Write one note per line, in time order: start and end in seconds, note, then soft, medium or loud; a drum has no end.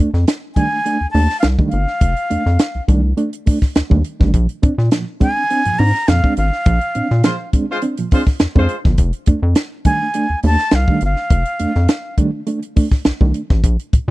0.14 0.25 F2 medium
0.14 snare soft
0.27 snare loud
0.27 closed hi-hat loud
0.55 0.67 D#3 medium
0.55 0.67 G3 medium
0.55 0.68 A3 medium
0.55 0.67 D4 medium
0.55 1.10 G#5 loud
0.55 kick medium
0.55 closed hi-hat medium
0.72 0.77 A3 soft
0.72 0.77 D4 soft
0.86 0.96 A3 medium
0.86 0.97 D4 medium
0.86 closed hi-hat medium
1.01 1.06 D#2 soft
1.11 1.27 D#2 medium
1.11 1.25 A3 medium
1.11 1.26 D4 medium
1.11 1.39 A5 loud
1.11 open hi-hat medium
1.30 snare soft
1.40 1.47 F5 loud
1.40 snare loud
1.40 closed hi-hat medium
1.44 1.57 C2 loud
1.59 1.68 D#3 medium
1.59 1.68 G3 medium
1.59 1.69 A3 medium
1.59 1.69 D4 medium
1.59 kick medium
1.69 1.79 A3 soft
1.69 1.79 D4 soft
1.69 2.83 F5 medium
1.69 closed hi-hat medium
1.73 1.86 G1 medium
1.87 snare soft
2.01 2.14 F1 medium
2.01 kick loud
2.01 closed hi-hat medium
2.17 closed hi-hat medium
2.31 2.38 F2 soft
2.31 2.42 A3 medium
2.31 2.42 D4 medium
2.31 closed hi-hat medium
2.46 2.58 F2 medium
2.46 snare soft
2.59 snare loud
2.59 closed hi-hat loud
2.75 2.80 C2 medium
2.88 3.13 C2 medium
2.88 2.99 D#3 medium
2.88 2.99 G3 medium
2.88 3.00 A3 medium
2.88 3.00 D4 medium
2.88 kick medium
2.88 closed hi-hat medium
3.04 3.09 A3 soft
3.04 3.09 D4 soft
3.17 3.28 A3 medium
3.17 3.29 D4 medium
3.17 closed hi-hat medium
3.33 closed hi-hat medium
3.46 3.57 A3 medium
3.46 3.58 D4 medium
3.46 kick medium
3.46 open hi-hat medium
3.62 kick medium
3.62 snare soft
3.75 3.82 D#2 medium
3.75 snare loud
3.75 closed hi-hat medium
3.90 4.03 D#2 medium
3.90 4.00 D#3 medium
3.90 4.00 G3 medium
3.90 4.01 A3 medium
3.90 4.01 D4 medium
3.90 kick medium
4.04 closed hi-hat medium
4.20 4.32 A1 loud
4.20 4.30 D#3 medium
4.20 4.30 G3 medium
4.20 4.30 A3 medium
4.20 4.30 D4 medium
4.20 kick loud
4.20 snare soft
4.34 4.47 A#1 loud
4.34 4.45 A#2 medium
4.34 4.45 F3 medium
4.34 kick loud
4.34 closed hi-hat medium
4.49 closed hi-hat medium
4.62 4.69 A#2 soft
4.62 4.74 C4 medium
4.62 4.74 D4 medium
4.62 kick loud
4.62 closed hi-hat medium
4.78 4.90 A#2 loud
4.78 snare soft
4.91 5.03 A#2 medium
4.91 5.03 F3 medium
4.91 snare loud
4.91 closed hi-hat loud
5.20 5.32 G#3 medium
5.20 5.32 C4 medium
5.20 5.32 D4 medium
5.20 5.80 G#5 loud
5.20 kick medium
5.20 closed hi-hat medium
5.37 5.42 C4 soft
5.37 5.42 D4 soft
5.50 5.61 C4 medium
5.50 5.62 D4 medium
5.50 closed hi-hat medium
5.65 5.71 G#2 soft
5.65 5.75 A#2 medium
5.65 5.75 F3 medium
5.65 closed hi-hat medium
5.79 5.92 G#2 medium
5.79 5.90 C4 medium
5.79 5.90 D4 medium
5.79 6.10 A#5 loud
5.79 open hi-hat medium
5.95 snare soft
6.08 6.21 F2 medium
6.08 6.20 A#2 medium
6.08 6.19 F3 medium
6.08 6.37 F5 loud
6.08 snare loud
6.08 closed hi-hat medium
6.23 6.33 G#3 medium
6.23 6.33 C4 medium
6.23 6.33 D4 medium
6.23 kick medium
6.37 6.50 G#1 medium
6.37 7.49 F5 loud
6.37 closed hi-hat medium
6.52 snare soft
6.65 6.79 A#1 loud
6.65 6.77 A#2 medium
6.65 6.77 F3 medium
6.65 kick loud
6.65 closed hi-hat medium
6.81 closed hi-hat soft
6.95 7.02 A#2 soft
6.95 7.06 C4 medium
6.95 7.07 D4 medium
6.95 closed hi-hat medium
7.10 7.22 A#2 loud
7.10 snare soft
7.24 7.36 A#2 medium
7.24 7.36 F3 medium
7.24 7.34 G#3 medium
7.24 7.34 F4 loud
7.24 7.34 C5 medium
7.24 snare loud
7.24 closed hi-hat loud
7.53 7.64 G#3 medium
7.53 7.64 C4 medium
7.53 7.64 D4 medium
7.53 kick medium
7.53 closed hi-hat medium
7.71 7.79 G#3 medium
7.71 7.79 F4 loud
7.71 7.79 C5 loud
7.82 7.93 C4 medium
7.82 7.94 D4 medium
7.82 closed hi-hat medium
7.97 8.08 A#2 medium
7.97 8.08 F3 medium
7.97 closed hi-hat medium
8.11 8.22 G#3 medium
8.11 8.23 C4 medium
8.11 8.23 D4 medium
8.11 8.22 F4 medium
8.11 8.22 C5 medium
8.11 kick medium
8.11 open hi-hat medium
8.27 kick medium
8.27 snare soft
8.39 8.47 F2 medium
8.39 snare loud
8.39 closed hi-hat medium
8.56 8.67 F2 medium
8.56 8.65 G#3 medium
8.56 8.76 G#3 medium
8.56 8.65 C4 medium
8.56 8.66 D4 medium
8.56 8.75 F4 medium
8.56 8.76 C5 medium
8.56 kick loud
8.69 closed hi-hat medium
8.84 8.97 G1 loud
8.84 8.95 A#2 medium
8.84 8.95 F3 medium
8.84 kick loud
8.84 snare soft
8.98 9.12 F1 loud
8.98 kick loud
8.98 closed hi-hat medium
9.13 closed hi-hat soft
9.26 9.34 F2 soft
9.26 9.39 A3 medium
9.26 9.39 D4 medium
9.26 kick loud
9.26 closed hi-hat medium
9.43 9.54 F2 loud
9.55 snare loud
9.55 closed hi-hat loud
9.85 9.97 D#3 medium
9.85 9.97 G3 medium
9.85 9.97 A3 medium
9.85 9.97 D4 medium
9.85 10.40 G#5 loud
9.85 kick medium
9.85 closed hi-hat medium
10.02 10.07 A3 soft
10.02 10.07 D4 medium
10.14 10.26 A3 medium
10.14 10.26 D4 medium
10.14 closed hi-hat medium
10.30 10.35 D#2 medium
10.43 10.57 D#2 medium
10.43 10.55 A3 medium
10.43 10.55 D4 medium
10.43 10.77 A5 loud
10.43 open hi-hat medium
10.58 snare soft
10.71 10.86 C2 loud
10.71 11.03 F5 loud
10.71 snare loud
10.71 closed hi-hat medium
10.88 10.98 D#3 medium
10.88 10.98 G3 medium
10.88 10.98 A3 medium
10.88 10.99 D4 medium
10.88 kick medium
11.01 11.15 G1 medium
11.01 closed hi-hat medium
11.05 12.16 F5 medium
11.16 snare soft
11.30 11.44 F1 medium
11.30 kick loud
11.30 closed hi-hat medium
11.46 closed hi-hat medium
11.59 11.67 F2 soft
11.59 11.71 A3 medium
11.59 11.71 D4 medium
11.59 closed hi-hat medium
11.75 11.87 F2 loud
11.75 snare soft
11.88 snare loud
11.88 closed hi-hat loud
12.18 12.29 D#3 medium
12.18 12.29 G3 medium
12.18 12.29 A3 medium
12.18 12.29 D4 medium
12.18 kick medium
12.18 closed hi-hat medium
12.47 12.58 A3 medium
12.47 12.59 D4 medium
12.47 closed hi-hat medium
12.62 closed hi-hat medium
12.76 12.87 A3 medium
12.76 12.87 D4 medium
12.76 kick medium
12.76 open hi-hat medium
12.91 kick medium
12.91 snare soft
13.05 13.12 C2 medium
13.05 snare loud
13.05 closed hi-hat medium
13.21 13.32 C2 medium
13.21 13.31 D#3 medium
13.21 13.31 G3 medium
13.21 13.31 A3 medium
13.21 13.31 D4 medium
13.21 kick medium
13.34 13.41 A3 soft
13.34 13.41 D4 soft
13.34 closed hi-hat medium
13.50 13.62 A1 medium
13.50 kick loud
13.50 snare soft
13.64 13.77 A#1 loud
13.64 kick loud
13.64 closed hi-hat medium
13.79 closed hi-hat soft
13.93 13.99 A#2 soft
13.93 kick loud
13.93 closed hi-hat medium